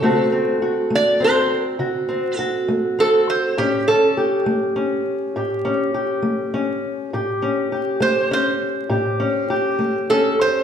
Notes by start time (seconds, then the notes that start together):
Already playing: A4
0.02 D3 A3 C4 F#4
0.32 C4
0.62 F#4
0.90 A3
0.95 D5
1.20 C4
1.24 C5
1.79 D3 F#4
2.09 C4
2.37 F#4 A4
2.68 A3
2.99 C4 A4
3.30 C5
3.58 A2 C#4 G4
3.88 C#4 A4
4.17 G4
4.46 A3
4.76 C#4
5.36 A2 G4
5.65 C#4
5.94 G4
6.22 A3
6.54 C#4
7.13 A2 G4
7.42 C#4
7.72 G4
8.00 A3 C5
8.31 C#4 C5
8.89 A2 G4
9.20 C#4
9.50 G4
9.79 A3
10.10 C#4 A4
10.41 C5